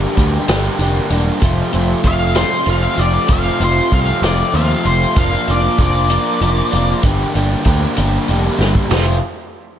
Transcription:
Already playing: overdriven electric guitar G2 D3 G3 A#3 D4 G4
0.16 picked electric bass D2, overdriven electric guitar G2 D3 G3 A#3 D4 G4, kick, closed hi-hat
0.47 picked electric bass G1, overdriven electric guitar G2 D3 G3 A#3 D4 G4, snare, closed hi-hat
0.79 picked electric bass F1, overdriven electric guitar G2 D3 G3 A#3 D4 G4, closed hi-hat
1.10 picked electric bass E1, overdriven electric guitar G2 D3 G3 A#3 D4 G4, closed hi-hat
1.40 picked electric bass F1, overdriven electric guitar F2 C3 F3 A3 C4 F4, kick, closed hi-hat, shaker
1.71 picked electric bass F1, overdriven electric guitar F2 C3 F3 A3 C4 F4, closed hi-hat
1.87 shaker
2.02 picked electric bass F1, overdriven electric guitar F2 C3 F3 A3 C4 F4, kick, closed hi-hat
2.07 lead electric guitar F5
2.33 overdriven electric guitar F2 C3 F3 A3 C4 F4, lead electric guitar C5, snare, closed hi-hat, shaker
2.64 picked electric bass F1, overdriven electric guitar F2 C3 F3 A3 C4 F4, closed hi-hat
2.70 lead electric guitar F5
2.94 picked electric bass F1, overdriven electric guitar F2 C3 F3 A3 C4 F4, closed hi-hat
3.01 lead electric guitar D5
3.27 picked electric bass F1, overdriven electric guitar F2 C3 F3 A3 C4 F4, kick, closed hi-hat, shaker
3.33 lead electric guitar F5
3.59 picked electric bass F1, overdriven electric guitar F2 C3 F3 A3 C4 F4, closed hi-hat
3.64 lead electric guitar C5
3.76 shaker
3.91 picked electric bass C2, overdriven electric guitar F2 C3 F3 A3 C4 F4, lead electric guitar F5, kick, closed hi-hat
4.22 picked electric bass F1, overdriven electric guitar F2 C3 F3 A3 C4 F4, lead electric guitar D5, snare, closed hi-hat, shaker
4.53 picked electric bass D#2, overdriven electric guitar F2 C3 F3 A3 C4 F4, lead electric guitar F5, closed hi-hat
4.84 picked electric bass F1, overdriven electric guitar F2 C3 F3 A3 C4 F4, lead electric guitar C5, closed hi-hat
5.16 picked electric bass F1, overdriven electric guitar F3 A#3 D4 F4, lead electric guitar F5, kick, closed hi-hat, shaker
5.47 picked electric bass F1, overdriven electric guitar F3 A#3 D4 F4, lead electric guitar D5, closed hi-hat
5.63 shaker
5.78 picked electric bass F1, overdriven electric guitar F3 A#3 D4 F4, lead electric guitar D5, kick, closed hi-hat
6.09 overdriven electric guitar F3 A#3 D4 F4, closed hi-hat, shaker
6.40 picked electric bass F1, overdriven electric guitar F3 A#3 D4 F4, closed hi-hat
6.72 picked electric bass F1, overdriven electric guitar F3 A#3 D4 F4, closed hi-hat
7.03 picked electric bass G1, overdriven electric guitar G2 D3 G3 A#3 D4 G4, kick, closed hi-hat, shaker
7.34 picked electric bass G1, overdriven electric guitar G2 D3 G3 A#3 D4 G4, closed hi-hat
7.51 shaker
7.65 picked electric bass D2, overdriven electric guitar G2 D3 G3 A#3 D4 G4, kick, closed hi-hat
7.96 picked electric bass G1, overdriven electric guitar G2 D3 G3 A#3 D4 G4, closed hi-hat, shaker
8.28 picked electric bass F1, overdriven electric guitar G2 D3 G3 A#3 D4 G4, closed hi-hat, shaker
8.57 picked electric bass G1, overdriven electric guitar G2 D3 G3 A#3 D4 G4, snare, shaker
8.75 kick, shaker
8.88 picked electric bass F1, overdriven electric guitar F2 C3 F3 A3 C4 F4, snare, floor tom, crash, shaker

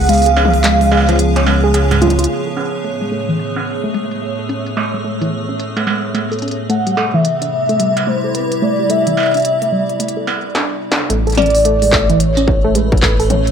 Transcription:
Already playing: analog synth bass C#2, ambient pad C#3 F3 B3 G#4 C#5, soft synth lead F#5
0.01 open hi-hat
0.04 open hi-hat
0.06 synth pluck G#3, soft synth lead F5, closed hi-hat, open hi-hat
0.09 open hi-hat
0.13 open hi-hat
0.18 open hi-hat
0.22 open hi-hat
0.26 synth pluck G#4, closed hi-hat
0.37 synth pluck C#4, struck metal
0.45 high tom
0.54 open hi-hat
0.64 synth pluck G#3, clap, closed hi-hat
0.81 synth pluck G#3, open hi-hat
0.92 synth pluck G#3, struck metal
0.97 struck metal
1.01 struck metal
1.09 synth pluck F3, closed hi-hat, struck metal
1.16 closed hi-hat, struck metal
1.36 synth pluck C#4, closed hi-hat, struck metal
1.47 synth pluck G#3, struck metal
1.64 synth pluck G#4
1.74 synth pluck G#4, closed hi-hat, struck metal
1.91 synth pluck G#2, closed hi-hat, struck metal
2.02 synth pluck F4, closed hi-hat, high tom
2.07 closed hi-hat, high tom
2.11 high tom
2.19 synth pluck F4, closed hi-hat
2.24 closed hi-hat
2.29 ambient pad A2, synth pluck A3, closed hi-hat
2.46 synth pluck A4, closed hi-hat
2.57 synth pluck C#4, struck metal
2.66 ambient pad A3
2.84 synth pluck A3, closed hi-hat
3.01 synth pluck G#3, closed hi-hat
3.12 synth pluck A3
3.20 closed hi-hat
3.29 synth pluck E3
3.39 closed hi-hat
3.56 synth pluck C#4, closed hi-hat, struck metal
3.84 synth pluck A3
3.94 synth pluck G#3, closed hi-hat
4.11 closed hi-hat
4.22 synth pluck A3
4.39 synth pluck A4
4.49 synth pluck C#4, closed hi-hat
4.66 closed hi-hat
4.77 synth pluck A3, struck metal
4.94 synth pluck G#3
5.04 synth pluck A3
5.21 synth pluck E3, closed hi-hat
5.49 synth pluck C#4
5.60 closed hi-hat
5.76 synth pluck A3, closed hi-hat, struck metal
5.87 synth pluck G#3, struck metal
6.14 synth pluck A3, closed hi-hat, struck metal
6.32 synth pluck A4, closed hi-hat
6.39 synth pluck C#4, closed hi-hat
6.42 closed hi-hat
6.48 closed hi-hat
6.51 closed hi-hat
6.69 ambient pad C3, synth pluck A3, soft synth lead F#5, closed hi-hat
6.87 synth pluck G3, closed hi-hat
6.92 ambient pad G3
6.97 synth pluck A3, struck metal
7.14 synth pluck E3, soft synth lead E5
7.25 closed hi-hat
7.42 synth pluck D4, closed hi-hat
7.49 ambient pad E4, soft synth lead E5
7.69 synth pluck A3, closed hi-hat
7.80 synth pluck G3, closed hi-hat
7.97 closed hi-hat, struck metal
8.07 synth pluck A3, soft synth lead C5
8.24 synth pluck A4
8.32 synth pluck C4, soft synth lead B4, ambient pad D5, closed hi-hat
8.52 closed hi-hat
8.62 synth pluck A3, soft synth lead D5
8.79 synth pluck G3
8.90 synth pluck A3, soft synth lead E5, closed hi-hat
9.07 synth pluck E3, closed hi-hat
9.17 struck metal
9.20 struck metal
9.23 struck metal
9.26 struck metal
9.31 synth pluck D4, closed hi-hat, struck metal
9.37 closed hi-hat
9.40 closed hi-hat
9.42 closed hi-hat
9.45 closed hi-hat
9.62 synth pluck A3, closed hi-hat
9.72 synth pluck G3
9.89 closed hi-hat
10.00 synth pluck A3, closed hi-hat
10.08 closed hi-hat
10.17 synth pluck A4
10.27 synth pluck B3, struck metal
10.55 snare
10.92 snare
11.10 analog synth bass A1, ambient pad A2, synth pluck A3, closed hi-hat
11.27 synth pluck A4, closed hi-hat
11.30 closed hi-hat
11.32 closed hi-hat
11.35 synth pluck C#4, soft synth lead D5, closed hi-hat
11.37 closed hi-hat, high tom, struck metal
11.42 closed hi-hat
11.46 closed hi-hat
11.50 closed hi-hat
11.55 open hi-hat
11.65 synth pluck A3, closed hi-hat
11.71 ambient pad A3
11.82 synth pluck G#3, open hi-hat
11.92 synth pluck A3, kick, clap
12.10 synth pluck E3, closed hi-hat
12.20 soft synth lead C#5, closed hi-hat
12.37 synth pluck C#4, closed hi-hat, struck metal
12.48 kick
12.65 synth pluck A3
12.75 synth pluck G#3, soft synth lead B4, closed hi-hat
12.92 kick
12.97 closed hi-hat
13.03 synth pluck A3, ambient pad G#4, kick, clap
13.09 ambient pad C#5
13.20 synth pluck A4, open hi-hat
13.30 synth pluck C#4, soft synth lead C#5, closed hi-hat, high tom
13.47 closed hi-hat

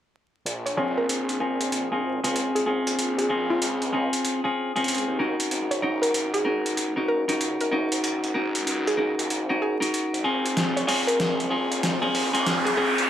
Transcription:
0.45 detuned saw bass A#1, closed hi-hat
0.66 synth pluck C#5, closed hi-hat
0.77 clean electric guitar C4 C#4 F4 G#4, synth pluck C#5
0.98 synth pluck A#4
1.08 detuned saw bass A#1, closed hi-hat
1.29 closed hi-hat
1.40 clean electric guitar C4 C#4 F4 G#4
1.61 closed hi-hat
1.72 closed hi-hat
1.92 clean electric guitar C4 C#4 F4 G#4
2.03 detuned saw bass G#1
2.24 detuned saw bass C#2, clean electric guitar C4 C#4 F4 G#4, closed hi-hat
2.36 closed hi-hat
2.55 detuned saw bass G#1, synth pluck G#4, closed hi-hat
2.66 clean electric guitar C4 C#4 F4 G#4, synth pluck G#4
2.87 detuned saw bass A#1, closed hi-hat
2.98 detuned saw bass A#1, closed hi-hat
3.18 synth pluck G#4, closed hi-hat
3.29 clean electric guitar C4 C#4 F4 G#4
3.50 synth pluck F4
3.61 detuned saw bass C#2, closed hi-hat
3.82 closed hi-hat
3.93 clean electric guitar C4 C#4 F4 G#4
4.13 closed hi-hat
4.25 closed hi-hat
4.44 clean electric guitar C4 C#4 F4 G#4
4.76 detuned saw bass C#2, clean electric guitar C4 C#4 F4 G#4, closed hi-hat
4.84 closed hi-hat
4.88 closed hi-hat
4.95 closed hi-hat
4.98 closed hi-hat
5.07 detuned saw bass D#2
5.19 clean electric guitar C#4 D#4 F#4 A#4
5.40 closed hi-hat
5.51 detuned saw bass G#1, closed hi-hat
5.71 synth pluck C#5, closed hi-hat
5.82 clean electric guitar C#4 D#4 F#4 A#4, synth pluck C#5
6.02 synth pluck A#4, closed hi-hat
6.14 detuned saw bass G#1, closed hi-hat
6.34 synth pluck G#4, closed hi-hat
6.45 clean electric guitar C#4 D#4 F#4 A#4
6.66 closed hi-hat
6.77 closed hi-hat
6.96 clean electric guitar C#4 D#4 F#4 A#4
7.08 detuned saw bass F#1, synth pluck A#4
7.28 detuned saw bass C#2, clean electric guitar C#4 D#4 F#4 A#4, closed hi-hat
7.41 closed hi-hat
7.60 detuned saw bass F#1, synth pluck A#4, closed hi-hat
7.71 clean electric guitar C#4 D#4 F#4 A#4
7.92 detuned saw bass G#1, closed hi-hat
8.03 detuned saw bass G#1, closed hi-hat
8.24 closed hi-hat
8.34 clean electric guitar C#4 D#4 F#4 A#4
8.55 closed hi-hat
8.66 detuned saw bass C#2, closed hi-hat
8.87 synth pluck G#4, closed hi-hat
8.97 clean electric guitar C#4 D#4 F#4 A#4, synth pluck G#4
9.18 detuned saw bass D#2, closed hi-hat
9.30 detuned saw bass G#1, closed hi-hat
9.49 clean electric guitar C#4 D#4 F#4 A#4
9.62 synth pluck G#4
9.80 clean electric guitar C#4 D#4 F#4 A#4, closed hi-hat
9.94 closed hi-hat
10.13 detuned saw bass G#1, closed hi-hat
10.24 clean electric guitar C4 C#4 F4 G#4
10.46 closed hi-hat
10.56 detuned saw bass A#1, snare, closed hi-hat, riser
10.77 synth pluck C#5, closed hi-hat
10.87 clean electric guitar C4 C#4 F4 G#4, synth pluck C#5, open hi-hat
11.07 synth pluck A#4, closed hi-hat
11.19 detuned saw bass A#1, snare, closed hi-hat
11.40 closed hi-hat
11.50 clean electric guitar C4 C#4 F4 G#4
11.72 closed hi-hat
11.83 snare, closed hi-hat
12.02 clean electric guitar C4 C#4 F4 G#4
12.14 detuned saw bass G#1, open hi-hat
12.33 detuned saw bass C#2, clean electric guitar C4 C#4 F4 G#4, closed hi-hat
12.46 snare, closed hi-hat
12.65 detuned saw bass G#1, synth pluck G#4, closed hi-hat
12.77 clean electric guitar C4 C#4 F4 G#4, synth pluck G#4
12.97 detuned saw bass A#1, closed hi-hat

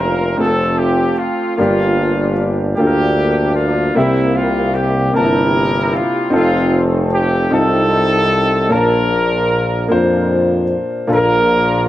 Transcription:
Already playing: tuba F1, upright piano A#3 D4 F4 A#4, horn section F4 A#4
0.36 tuba F1, upright piano A3 C4 F4 G#4, horn section A4
0.42 horn section C4 F4
0.46 upright piano A4
0.78 horn section G4
1.17 horn section F4
1.56 tuba G1, upright piano G2 A#3 D4 F4, horn section A#3 D4 F4
1.61 upright piano G4
2.76 tuba D2, upright piano A#3 D4 F4, horn section A#3 D4 G4
2.80 upright piano A4
2.86 upright piano A#4
3.55 horn section F4
3.95 tuba C2, upright piano C3 A#3 C4 G4 E5, horn section G3 A#3 E4
4.35 horn section F4
4.74 horn section G4
5.13 tuba G1, upright piano A#3 C4 D4 A5, horn section E4 G4 A#4
5.21 upright piano E4
5.94 horn section F4
6.30 tuba F1, upright piano C4 D#4 F4 A4, horn section F4
6.35 horn section A3 C4
7.13 horn section G4
7.50 tuba C2, upright piano C4 D#4 F4 A4, horn section A4
7.55 horn section C4 D#4
8.69 tuba A#1, upright piano A#2 A#3 C#4 F4 A5, horn section D4 A#4
8.73 upright piano D4, horn section F4
9.88 tuba F2, upright piano A#3 D4 F4 C5
11.07 tuba A#1, upright piano A#2 A#3 D4 F4 A4, horn section D4 F4
11.13 horn section A#4, upright piano A#4

